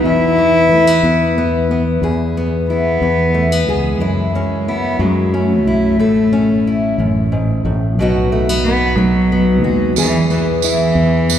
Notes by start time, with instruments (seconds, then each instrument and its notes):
Already playing: steel-string acoustic guitar B3
0.04 fretless electric bass E2, steel-string acoustic guitar E2, cello E4
0.38 steel-string acoustic guitar E3
0.69 fretless electric bass E3, steel-string acoustic guitar A3
0.87 steel-string acoustic guitar B3
1.03 fretless electric bass E2, steel-string acoustic guitar B3
1.38 steel-string acoustic guitar B3
1.71 steel-string acoustic guitar B3
2.02 fretless electric bass E2, steel-string acoustic guitar E2 G#4
2.37 steel-string acoustic guitar B3
2.70 cello B3, steel-string acoustic guitar E4
3.01 fretless electric bass E2, steel-string acoustic guitar E3
3.34 steel-string acoustic guitar A3
3.52 steel-string acoustic guitar B3
3.68 fretless electric bass C#2, cello G#3, steel-string acoustic guitar G#4
4.00 steel-string acoustic guitar F#2 E4, fretless electric bass F#2
4.35 cello G#3, steel-string acoustic guitar C#4
4.68 cello B3, steel-string acoustic guitar E4
4.99 fretless electric bass F#2, steel-string acoustic guitar F#3, cello G#3
5.34 cello A3, steel-string acoustic guitar C#4
5.66 fretless electric bass B1, steel-string acoustic guitar E4
5.99 fretless electric bass A1, steel-string acoustic guitar A2 A4
6.33 steel-string acoustic guitar C#4
6.67 steel-string acoustic guitar E4
6.98 fretless electric bass A1, steel-string acoustic guitar F#2
7.32 steel-string acoustic guitar G#2
7.65 fretless electric bass A1, steel-string acoustic guitar A2
7.98 fretless electric bass B1, steel-string acoustic guitar B2 F#3 B3 D#4
8.02 steel-string acoustic guitar F#4
8.32 steel-string acoustic guitar A3
8.49 steel-string acoustic guitar B3
8.66 cello B3, steel-string acoustic guitar D#4
8.96 fretless electric bass B1, cello F#3, steel-string acoustic guitar F#3
9.32 steel-string acoustic guitar B3
9.62 fretless electric bass D#2, cello G#3, steel-string acoustic guitar F#4
9.96 fretless electric bass E2, steel-string acoustic guitar E2 G#4, cello E3, tambourine
10.30 cello E3, steel-string acoustic guitar B3, tambourine
10.62 cello E3, steel-string acoustic guitar E4, tambourine
10.95 fretless electric bass E2
11.29 steel-string acoustic guitar B3, tambourine